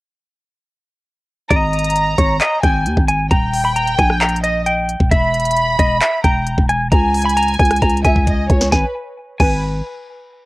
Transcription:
1.50 808-style bass G#1, clean electric guitar D#5, violin section A#5, kick, closed hi-hat
1.73 closed hi-hat
1.79 closed hi-hat
1.84 closed hi-hat
1.90 closed hi-hat
1.96 closed hi-hat
2.18 808-style bass G#1, clean electric guitar C#5, kick, closed hi-hat
2.41 clean electric guitar D#5, clap, closed hi-hat
2.63 808-style bass G#1, clean electric guitar G5, violin section G#5, kick, closed hi-hat
2.86 808-style bass D#2, closed hi-hat
2.97 808-style bass G#1, kick
3.08 clean electric guitar G#5, closed hi-hat
3.31 808-style bass D#1, violin section G5, clean electric guitar A#5, kick, closed hi-hat
3.54 open hi-hat
3.65 clean electric guitar B5
3.76 clean electric guitar A#5, closed hi-hat
3.87 closed hi-hat
3.99 808-style bass A#1, clean electric guitar G#5, kick, closed hi-hat
4.10 cross-stick
4.21 clean electric guitar A#5, clap, closed hi-hat
4.29 closed hi-hat
4.36 closed hi-hat
4.43 clean electric guitar D#5, violin section D#5, closed hi-hat
4.66 clean electric guitar G5, closed hi-hat
4.89 closed hi-hat
5.00 808-style bass D#1, kick
5.11 808-style bass E1, clean electric guitar E5, violin section B5, kick, closed hi-hat
5.34 closed hi-hat
5.40 closed hi-hat
5.45 closed hi-hat
5.51 closed hi-hat
5.57 closed hi-hat
5.79 808-style bass E1, clean electric guitar D#5, kick, closed hi-hat
6.02 clean electric guitar E5, clap, closed hi-hat
6.24 808-style bass E1, clean electric guitar G5, violin section A#5, kick, closed hi-hat
6.47 closed hi-hat
6.58 808-style bass E1, kick
6.69 clean electric guitar G#5, closed hi-hat
6.92 808-style bass C#2, violin section G#5, clean electric guitar A#5, kick, closed hi-hat
7.14 closed hi-hat, open hi-hat
7.22 clean electric guitar B5, closed hi-hat
7.29 closed hi-hat
7.37 clean electric guitar A#5, closed hi-hat
7.43 closed hi-hat
7.48 closed hi-hat
7.54 closed hi-hat
7.59 808-style bass C#2, clean electric guitar G#5, kick, closed hi-hat
7.65 closed hi-hat
7.71 cross-stick, closed hi-hat
7.76 closed hi-hat
7.82 808-style bass C#2, clean electric guitar A#5, kick, closed hi-hat
7.90 closed hi-hat
7.97 closed hi-hat
8.05 808-style bass C#2, violin section E5, clean electric guitar G#5, kick, closed hi-hat
8.16 kick
8.27 violin section D#5, kick, closed hi-hat
8.50 808-style bass C#2, violin section C#5, kick, closed hi-hat
8.61 snare
8.72 808-style bass G#1, violin section B4, clean electric guitar G#5, kick, snare
9.40 808-style bass G#1, violin section B4, clean electric guitar G#5, kick, crash

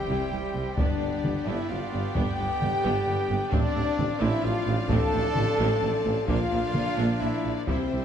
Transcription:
Already playing: trombone section E3 G3, pipe organ G3 E4 G4 C5, trumpet G4, french horn section G4, violin section C5 G5, flute G5
0.09 cello section C2, double bass section C2, tuba C2, viola section G3 E4
0.32 cello section C2, tuba C2, double bass section C2, viola section G3
0.54 cello section C2, tuba C2, double bass section C2, viola section G3 C4
0.75 double bass section G1, tuba G1, cello section G2, timpani G2, trombone section D3 B3, pipe organ B3 D4 D5, viola section B3 D4, french horn section D4, trumpet D4, flute D5, violin section D5 G5, taiko
1.00 double bass section G1, tuba G1, cello section G2, viola section G3 B3
1.23 tuba G1, double bass section G1, cello section G2, viola section B3, taiko mid
1.45 tuba G1, double bass section G1, cello section G2, viola section B3 D4, trumpet E4, french horn section E4, flute E5, violin section E5
1.68 double bass section G1, tuba G1, cello section G2, viola section G3 B3, french horn section F4, trumpet F4, flute F5, violin section F5
1.92 tuba G1, double bass section G1, cello section G2, viola section B3
2.12 tuba G1, cello section G2, viola section B3 D4, french horn section G4, trumpet G4, flute G5, violin section G5
2.16 double bass section G1, taiko
2.39 tuba G1, double bass section G1, cello section G2, viola section G3 B3
2.61 double bass section G1, tuba G1, cello section G2, viola section B3, taiko mid
2.84 tuba G1, double bass section G1, cello section G2, viola section B3 D4
3.07 tuba G1, double bass section G1, cello section G2, viola section G3 B3
3.30 tuba G1, double bass section G1, cello section G2, viola section B3
3.52 double bass section A1, tuba A1, cello section A2, pipe organ F3 C4, trombone section F3 D4, viola section C4 D4, trumpet D4, french horn section D4, violin section D5 F5, flute D5, taiko
3.75 double bass section A1, tuba A1, cello section A2, viola section A3 C4
3.98 double bass section A1, tuba A1, cello section A2, viola section C4, taiko mid
4.20 double bass section A1, tuba A1, cello section A2, viola section C4 D4, french horn section E4, trumpet E4, flute E5, violin section E5
4.43 double bass section A1, tuba A1, cello section A2, viola section A3 C4, french horn section F4, trumpet F4, flute F5, violin section F5
4.66 double bass section A1, tuba A1, cello section A2, viola section C4
4.87 double bass section A1, tuba A1, cello section A2, viola section C4 D4, trumpet A4, french horn section A4, flute A5, violin section A5, taiko
5.12 double bass section A1, tuba A1, cello section A2, viola section A3 C4
5.35 double bass section A1, tuba A1, cello section A2, viola section C4, taiko mid
5.58 double bass section A1, tuba A1, cello section A2, viola section C4 D4
5.82 double bass section A1, tuba A1, cello section A2, viola section A3 C4
6.04 double bass section A1, tuba A1, cello section A2, viola section C4
6.27 double bass section A#1, tuba A#1, cello section A#2, trombone section F3 D4, viola section A#3 D4, pipe organ A#3 D4 D5, french horn section F4, trumpet F4, violin section D5 F5, flute F5, taiko
6.50 double bass section A#1, tuba A#1, cello section A#2, viola section F3 A#3
6.74 double bass section A#1, tuba A#1, cello section A#2, viola section A#3, taiko mid
6.97 double bass section A#1, tuba A#1, cello section A#2, viola section A#3 D4
7.20 double bass section A#1, tuba A#1, cello section A#2, viola section F3 A#3, trumpet E4, french horn section E4, violin section E5, flute E5
7.44 double bass section A#1, tuba A#1, cello section A#2, viola section A#3
7.55 french horn section D4, trumpet D4, violin section D5, flute D5
7.66 double bass section C2, tuba C2, cello section C3, timpani C3, pipe organ G3 E4 G4 C5, viola section G3 E4, trombone section G3 E4, trumpet C4, french horn section C4, violin section C5 E5, flute C5, taiko
7.92 double bass section C2, tuba C2, cello section C3, viola section G3

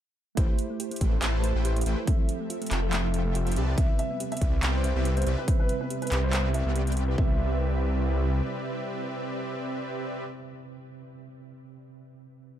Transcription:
0.35 detuned saw bass A1, tine electric piano A3 E4 G4 C5, synth arpeggio sound A3, supersaw synth A3 E4 B4 C5 G5, analog synth pad A3 G4 C5 E5, kick, closed hi-hat
0.49 synth arpeggio sound E4
0.59 closed hi-hat
0.70 synth arpeggio sound A3
0.80 synth arpeggio sound G4, closed hi-hat
0.91 synth arpeggio sound A3, closed hi-hat
0.96 closed hi-hat
1.01 detuned saw bass A1, supersaw synth A3 E4 B4 C5 G5, kick, closed hi-hat
1.13 synth arpeggio sound A4
1.22 detuned saw bass A1, synth arpeggio sound A3, supersaw synth A3 E4 B4 C5 A5, clap, closed hi-hat
1.34 synth arpeggio sound E4
1.43 tine electric piano A3 E4 G4 C5, closed hi-hat
1.55 detuned saw bass A1, synth arpeggio sound A3, supersaw synth A3 E4 B4 C5 G5
1.64 tine electric piano A3 E4 G4 C5, synth arpeggio sound G4, closed hi-hat
1.76 synth arpeggio sound A3, closed hi-hat
1.81 closed hi-hat
1.86 detuned saw bass A1, supersaw synth A3 E4 B4 C5 G5, closed hi-hat
1.98 synth arpeggio sound A4
2.05 tine electric piano F3 C4 A4 E5, analog synth pad F3 C4 A4, synth arpeggio sound A3, kick, closed hi-hat
2.19 synth arpeggio sound E4
2.29 closed hi-hat
2.40 synth arpeggio sound A3
2.50 synth arpeggio sound F4, closed hi-hat
2.62 synth arpeggio sound A3, closed hi-hat
2.66 closed hi-hat
2.71 detuned saw bass F1, supersaw synth F3 F4 A4 E5 G5, clap, closed hi-hat
2.83 synth arpeggio sound A4
2.91 tine electric piano F3 C4 A4 E5, synth arpeggio sound A3, clap, closed hi-hat
3.04 synth arpeggio sound E4
3.14 closed hi-hat
3.25 synth arpeggio sound A3
3.35 synth arpeggio sound F4, closed hi-hat
3.47 synth arpeggio sound A3, closed hi-hat
3.52 closed hi-hat
3.56 detuned saw bass C2, analog synth pad C3 G3 B4, supersaw synth C4 G4 B4 D5 A5, closed hi-hat
3.68 synth arpeggio sound B4
3.76 detuned saw bass C2, tine electric piano C3 C4 B4, synth arpeggio sound B3, supersaw synth C4 G4 B4 D5 E5, grand piano E5, kick, closed hi-hat
3.80 tine electric piano E5
3.89 synth arpeggio sound E4
3.99 grand piano E5, closed hi-hat
4.11 synth arpeggio sound B3
4.20 synth arpeggio sound G4, closed hi-hat
4.32 synth arpeggio sound B3, grand piano E5, closed hi-hat
4.37 closed hi-hat
4.41 detuned saw bass C2, supersaw synth C4 G4 B4 D5 E5, kick, closed hi-hat
4.53 synth arpeggio sound B4
4.63 detuned saw bass C2, synth arpeggio sound B3, supersaw synth C4 G4 B4 D5 G5, clap, closed hi-hat
4.74 synth arpeggio sound E4, grand piano C5
4.83 tine electric piano C3 C4 B4 E5, closed hi-hat
4.96 detuned saw bass C2, synth arpeggio sound B3, supersaw synth C4 G4 B4 D5 E5
5.04 tine electric piano C3 C4 B4 E5, synth arpeggio sound G4, closed hi-hat
5.17 synth arpeggio sound B3, grand piano C5, closed hi-hat
5.22 closed hi-hat
5.27 detuned saw bass C2, supersaw synth C4 G4 B4 D5 E5, closed hi-hat
5.38 synth arpeggio sound B4, grand piano B4
5.46 tine electric piano C3 C4 B4 E5, synth arpeggio sound B3, kick, closed hi-hat
5.59 synth arpeggio sound E4, grand piano B4
5.69 closed hi-hat
5.81 synth arpeggio sound B3, grand piano B4
5.90 synth arpeggio sound G4, closed hi-hat
6.02 synth arpeggio sound B3, grand piano B4, closed hi-hat
6.07 closed hi-hat
6.12 detuned saw bass C2, supersaw synth C4 G4 B4 D5 E5, clap, closed hi-hat
6.23 synth arpeggio sound B4, grand piano C5
6.31 tine electric piano C3 C4 B4, synth arpeggio sound B3, clap, closed hi-hat
6.35 tine electric piano E5
6.45 synth arpeggio sound E4
6.54 grand piano E5, closed hi-hat
6.66 detuned saw bass C2, synth arpeggio sound B3, supersaw synth C4 G4 B4 D5 G5
6.76 synth arpeggio sound G4, closed hi-hat
6.87 synth arpeggio sound B3, closed hi-hat
6.92 closed hi-hat
6.97 closed hi-hat
7.08 synth arpeggio sound B4
7.15 detuned saw bass C2, tine electric piano C3 C4 B4, analog synth pad C3 G3 E4 B4, synth arpeggio sound B3, supersaw synth C4 G4 B4 D5 E5, grand piano E5, kick
7.21 tine electric piano E5

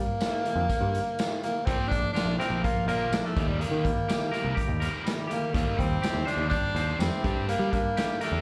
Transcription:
Already playing: tenor saxophone A#3
0.21 snare, closed hi-hat, tambourine
0.45 closed hi-hat
0.56 picked electric bass F2
0.70 kick, closed hi-hat
0.81 picked electric bass G2
0.95 closed hi-hat
1.19 snare, closed hi-hat, tambourine
1.43 tenor saxophone A#3, closed hi-hat
1.66 picked electric bass A#1, overdriven electric guitar A#2 F3 A#3, clean electric guitar A#2, tenor saxophone C4, kick, closed hi-hat
1.87 picked electric bass A#1, overdriven electric guitar A#2 F3, tenor saxophone D4, clean electric guitar D4
1.92 kick, closed hi-hat
2.13 overdriven electric guitar A#2 F3, tenor saxophone D4, clean electric guitar F4, closed hi-hat, tambourine
2.17 snare
2.26 picked electric bass A#1
2.38 overdriven electric guitar A#2 F3 A#3, tenor saxophone C4, clean electric guitar A#4, closed hi-hat
2.50 picked electric bass A#1
2.63 overdriven electric guitar A#2 F3, tenor saxophone A#3, clean electric guitar F4, kick, closed hi-hat
2.86 picked electric bass A#1, overdriven electric guitar A#2 F3 A#3, tenor saxophone A#3, clean electric guitar A#4, closed hi-hat
3.11 picked electric bass A#1, overdriven electric guitar A#2 F3, clean electric guitar D4, snare, closed hi-hat, tambourine
3.25 tenor saxophone A3
3.36 picked electric bass D#2, clean electric guitar D#3, overdriven electric guitar D#3 G3 A#3, kick, closed hi-hat
3.47 tenor saxophone G3
3.59 clean electric guitar D#3, overdriven electric guitar D#3 G3 A#3, tenor saxophone A#3, closed hi-hat
3.71 picked electric bass D#3
3.84 overdriven electric guitar D#3 A#3, clean electric guitar G3, kick, closed hi-hat
4.08 overdriven electric guitar D#3 A#3, clean electric guitar G4, snare, closed hi-hat, tambourine
4.32 overdriven electric guitar D#3 G3 A#3, clean electric guitar A#4, closed hi-hat
4.45 picked electric bass C2
4.55 overdriven electric guitar D#3 A#3, clean electric guitar G4, kick, closed hi-hat
4.68 picked electric bass D#2
4.80 overdriven electric guitar D#3 G3 A#3, clean electric guitar A#4, closed hi-hat
5.04 overdriven electric guitar D#3 A#3, clean electric guitar G3, snare, closed hi-hat, tambourine
5.27 overdriven electric guitar D#3 A#3, clean electric guitar G4, closed hi-hat
5.32 tenor saxophone A#3
5.52 picked electric bass D#2, clean electric guitar D#3, overdriven electric guitar D#3 G3 C4, tenor saxophone A#3, kick, closed hi-hat
5.77 picked electric bass D#2, overdriven electric guitar D#3 G3, clean electric guitar G3, tenor saxophone C4, kick, closed hi-hat
6.02 overdriven electric guitar D#3 G3, clean electric guitar G4, snare, closed hi-hat, tambourine
6.13 picked electric bass D#2
6.25 overdriven electric guitar D#3 G3 C4, tenor saxophone D4, clean electric guitar C5, closed hi-hat
6.37 picked electric bass D#2
6.49 overdriven electric guitar D#3 G3, tenor saxophone D4, clean electric guitar G4, kick, closed hi-hat
6.75 picked electric bass D#2, overdriven electric guitar D#3 G3 C4, clean electric guitar C5, closed hi-hat
6.99 picked electric bass F2, overdriven electric guitar D#3 G3, clean electric guitar G3, tenor saxophone C4, snare, closed hi-hat, tambourine
7.23 picked electric bass G2, clean electric guitar G3, overdriven electric guitar G3 D4 G4, kick, closed hi-hat
7.48 clean electric guitar G3, overdriven electric guitar G3 D4 G4, tenor saxophone A#3, closed hi-hat
7.59 picked electric bass G3
7.72 overdriven electric guitar G3 D4, tenor saxophone A#3, clean electric guitar D4, kick, closed hi-hat
7.97 overdriven electric guitar G3 D4, clean electric guitar G4, snare, closed hi-hat, tambourine
8.21 overdriven electric guitar G3 D4 G4, tenor saxophone A3, clean electric guitar A#4, closed hi-hat
8.32 picked electric bass E2

